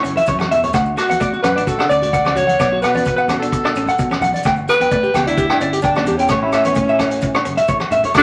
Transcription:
Already playing: alto saxophone E4
0.03 fingered electric bass F#1, clean electric guitar C#4, closed hi-hat, maracas
0.17 clean electric guitar E5, closed hi-hat, high conga
0.26 fingered electric bass F#2, clean electric guitar C#5, kick, closed hi-hat, high conga, maracas
0.39 clean electric guitar C#4, cross-stick, high conga, low agogo, maracas
0.51 fingered electric bass E2, clean electric guitar E5, closed hi-hat, low conga
0.63 clean electric guitar C#5, closed hi-hat, low conga, maracas
0.73 fingered electric bass D2, clean electric guitar A3 F#5, kick, cross-stick, closed hi-hat, low agogo, maracas
0.85 maracas
0.97 alto saxophone F#4, clean electric guitar F#4, cross-stick, closed hi-hat, low agogo, maracas
1.09 clean electric guitar B3 F#5, closed hi-hat, high conga, maracas
1.20 clean electric guitar A3 D5, kick, closed hi-hat, maracas
1.33 clean electric guitar F#4, maracas
1.42 fingered electric bass F#2, clean electric guitar C#4 F#5, alto saxophone B4, cross-stick, closed hi-hat, high conga, low conga, low agogo, maracas
1.56 fingered electric bass A1, clean electric guitar D4 D5, closed hi-hat
1.67 clean electric guitar F#4, alto saxophone A4, kick, closed hi-hat, maracas
1.79 fingered electric bass D3, clean electric guitar D4 F#5, cross-stick, low agogo, maracas
1.89 fingered electric bass D2, clean electric guitar C#4 D5, alto saxophone D5, closed hi-hat, maracas
2.02 clean electric guitar F#4, closed hi-hat, low conga, maracas
2.13 clean electric guitar F#5, kick, closed hi-hat, maracas
2.25 fingered electric bass C#2, clean electric guitar C#4 D5, cross-stick, high conga, low agogo, maracas
2.35 clean electric guitar F#4, alto saxophone C#5, closed hi-hat, high conga, low conga, maracas
2.47 clean electric guitar F#5, closed hi-hat, high conga, maracas
2.59 fingered electric bass B1, clean electric guitar B3 D5, kick, cross-stick, closed hi-hat, low agogo, maracas
2.72 clean electric guitar F#4
2.82 fingered electric bass B2, alto saxophone B4, clean electric guitar F#5, cross-stick, closed hi-hat, low agogo, maracas
2.94 clean electric guitar C#4 D5, closed hi-hat, high conga, maracas
3.05 clean electric guitar B3, kick, closed hi-hat, maracas
3.16 alto saxophone B4, clean electric guitar F#5, maracas
3.28 clean electric guitar C#4, cross-stick, closed hi-hat, high conga, low conga, low agogo, maracas
3.39 clean electric guitar D4, alto saxophone A4, closed hi-hat
3.52 kick, closed hi-hat, maracas
3.65 clean electric guitar D4 D5, cross-stick, low agogo, maracas
3.75 fingered electric bass A1, clean electric guitar C#4, closed hi-hat, maracas
3.86 clean electric guitar F#5, closed hi-hat, low conga, maracas
3.98 fingered electric bass B2, muted clean electric guitar stroke, kick, closed hi-hat, maracas
4.11 clean electric guitar C#4, cross-stick, high conga, low agogo, maracas
4.21 fingered electric bass B1, clean electric guitar F#5, closed hi-hat, high conga, low conga, maracas
4.32 clean electric guitar D5, closed hi-hat, high conga, maracas
4.43 fingered electric bass G1, clean electric guitar A3 G5, kick, cross-stick, closed hi-hat, low agogo, maracas
4.56 maracas
4.68 alto saxophone B4, muted clean electric guitar stroke, cross-stick, closed hi-hat, low agogo, maracas
4.80 clean electric guitar B3 G5, closed hi-hat, high conga, maracas
4.91 clean electric guitar A3 D5, kick, closed hi-hat, maracas
5.03 clean electric guitar G4, maracas
5.14 fingered electric bass C#2, clean electric guitar B3 G5, alto saxophone G4, cross-stick, closed hi-hat, high conga, low conga, low agogo, maracas
5.27 fingered electric bass D2, clean electric guitar D4 D5, alto saxophone E4, closed hi-hat
5.37 clean electric guitar G4, kick, closed hi-hat, maracas
5.50 fingered electric bass G2, clean electric guitar D4 G5, cross-stick, low agogo, maracas
5.61 fingered electric bass G1, clean electric guitar C#4 D5, closed hi-hat, maracas
5.73 clean electric guitar G4, closed hi-hat, maracas
5.82 alto saxophone D4, clean electric guitar G5, kick, closed hi-hat, maracas
5.95 fingered electric bass E2, clean electric guitar C#4 D5, cross-stick, high conga, low agogo, maracas
6.06 clean electric guitar G4, closed hi-hat, high conga, low conga, maracas
6.17 alto saxophone C#4, clean electric guitar G5, closed hi-hat, maracas
6.28 fingered electric bass A1, clean electric guitar C#5, kick, cross-stick, closed hi-hat, low agogo, maracas
6.33 clean electric guitar A3
6.43 clean electric guitar E4
6.52 fingered electric bass A2, clean electric guitar E5, cross-stick, closed hi-hat, low agogo, maracas
6.64 clean electric guitar B3 C#5, closed hi-hat, high conga, maracas
6.75 clean electric guitar A3, kick, closed hi-hat, maracas
6.89 clean electric guitar E5, maracas
6.99 clean electric guitar C#4, cross-stick, closed hi-hat, high conga, low conga, low agogo, maracas
7.11 closed hi-hat, maracas
7.21 kick, closed hi-hat, maracas
7.34 clean electric guitar D4 C#5, cross-stick, low agogo, maracas
7.45 fingered electric bass F#1, clean electric guitar C#4, closed hi-hat, maracas
7.57 clean electric guitar E5, closed hi-hat, low conga, maracas
7.68 fingered electric bass A2, clean electric guitar C#5, kick, closed hi-hat, high conga, maracas
7.80 muted clean electric guitar stroke, cross-stick, high conga, low agogo, maracas
7.91 fingered electric bass A1, clean electric guitar E5, closed hi-hat, low conga, maracas
8.04 clean electric guitar C#5, closed hi-hat, low conga, maracas
8.14 fingered electric bass D2, clean electric guitar A3, transistor combo organ D4 F#4 A4, kick, cross-stick, closed hi-hat, low agogo, maracas

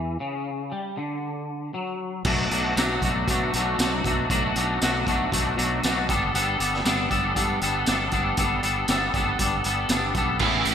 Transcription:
Already playing: fingered electric bass E2, clean electric guitar E3
0.20 clean electric guitar C#3
0.72 clean electric guitar G3
0.97 clean electric guitar D3
1.74 clean electric guitar F#3
2.25 fingered electric bass B1, clean electric guitar B2 F#3 A3 D4 F#4, kick, crash
2.50 fingered electric bass B1, clean electric guitar B2 F#3 A3 D4 F#4, closed hi-hat
2.76 fingered electric bass B1, clean electric guitar B2 F#3 A3 D4 F#4, snare, closed hi-hat, tambourine
3.01 fingered electric bass B1, clean electric guitar B2 F#3 A3 D4 F#4, kick, closed hi-hat
3.27 fingered electric bass B2, clean electric guitar B2 F#3 A3 D4 F#4, kick, closed hi-hat
3.53 fingered electric bass B1, clean electric guitar B2 F#3 A3 D4 F#4, closed hi-hat
3.79 fingered electric bass B1, clean electric guitar B2 F#3 A3 D4 F#4, snare, closed hi-hat, tambourine
4.04 fingered electric bass B1, clean electric guitar B2 F#3 A3 D4 F#4, kick, closed hi-hat
4.29 fingered electric bass B1, clean electric guitar B2 F#3 A3 D4 F#4, kick, closed hi-hat
4.56 fingered electric bass B1, clean electric guitar B2 F#3 A3 D4 F#4, closed hi-hat
4.81 fingered electric bass B1, clean electric guitar B2 F#3 A3 D4 F#4, snare, closed hi-hat, tambourine
5.06 fingered electric bass B1, clean electric guitar B2 F#3 A3 D4 F#4, kick, closed hi-hat
5.32 fingered electric bass B1, clean electric guitar B2 F#3 A3 D4 F#4, kick, closed hi-hat
5.56 fingered electric bass B1, clean electric guitar B2 F#3 A3 D4 F#4, closed hi-hat
5.83 fingered electric bass B1, clean electric guitar B2 F#3 A3 D4 F#4, snare, closed hi-hat, tambourine
6.08 fingered electric bass G1, clean electric guitar G3 B3 D4 A4, kick, closed hi-hat
6.34 fingered electric bass G1, clean electric guitar G3 B3 D4 A4, closed hi-hat
6.59 fingered electric bass G1, clean electric guitar G3 B3 D4 A4, closed hi-hat
6.74 snare
6.84 fingered electric bass G1, clean electric guitar G3 B3 D4 A4, snare, closed hi-hat, tambourine
7.09 fingered electric bass G1, clean electric guitar G3 B3 D4 A4, kick, closed hi-hat
7.34 fingered electric bass G2, clean electric guitar G3 B3 D4 A4, kick, closed hi-hat
7.61 fingered electric bass G1, clean electric guitar G3 B3 D4 A4, closed hi-hat
7.86 fingered electric bass G1, clean electric guitar G3 B3 D4 A4, snare, closed hi-hat, tambourine
8.11 fingered electric bass G1, clean electric guitar G3 B3 D4 A4, kick, closed hi-hat
8.37 fingered electric bass G1, clean electric guitar G3 B3 D4 A4, kick, closed hi-hat
8.62 fingered electric bass G1, clean electric guitar G3 B3 D4 A4, closed hi-hat
8.88 fingered electric bass G1, clean electric guitar G3 B3 D4 A4, snare, closed hi-hat, tambourine
9.13 fingered electric bass G1, clean electric guitar G3 B3 D4 A4, kick, closed hi-hat
9.39 fingered electric bass G1, clean electric guitar G3 B3 D4 A4, kick, closed hi-hat
9.64 fingered electric bass G1, clean electric guitar G3 B3 D4 A4, closed hi-hat
9.89 fingered electric bass G1, clean electric guitar G3 B3 D4 A4, snare, closed hi-hat, tambourine
10.14 fingered electric bass B1, clean electric guitar G3 B3 D4 A4, kick, closed hi-hat
10.39 fingered electric bass A1, clean electric guitar A2 E3 B3 C#4 E4, distorted electric guitar A3, kick, crash
10.65 fingered electric bass A1, clean electric guitar A2 E3 B3 C#4, distorted electric guitar A3, closed hi-hat
10.69 clean electric guitar E4

